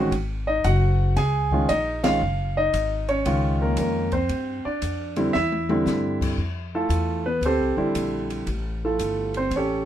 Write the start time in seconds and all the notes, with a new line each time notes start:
Already playing: A1 D#3 G#3 C#4 F#4
0.11 G#1, ride
0.47 D#4 D#5
0.64 F#1 F#4 F#5, hi-hat pedal, ride
1.16 C#2 G#4 G#5, snare, ride
1.51 D#3 G#3 C#4 F4, kick
1.69 A#1 D#4 D#5, hi-hat pedal, ride
2.04 D#3 G#3 C#4 F4 F5, snare, ride
2.21 F#1
2.57 D#4 D#5
2.74 G#1, hi-hat pedal, ride
3.09 C#4 C#5, ride
3.25 C#2 D#3 G#3 C#4 F4, ride
3.62 A#3 A#4
3.77 F2 A#4, hi-hat pedal, ride
3.81 A#3
4.12 C4 C5, kick, ride
4.29 G2, ride
4.65 D4 D5, muted upright bass stroke
4.82 F2, hi-hat pedal, ride
5.16 D3 G3 C4 E4, ride
5.33 E2 E4 E5, snare
5.52 high tom
5.69 D3 G3 C4 E4, high tom
5.86 G2, snare, hi-hat pedal
6.21 kick, crash
6.37 F2
6.75 A3 E4 F4 A4
6.89 E2, hi-hat pedal, ride
7.26 B3 B4
7.41 D2, ride
7.45 C4 G4 A4 C5
7.60 C2
7.77 A1 D3 G3 C4 E4
7.95 A#1, hi-hat pedal, ride
8.30 ride
8.46 A1, ride
8.85 A3 E4 F4 A4
8.99 G1, hi-hat pedal, ride
9.34 C4 C5, ride
9.51 A1, ride
9.56 C#4 G4 A4 C#5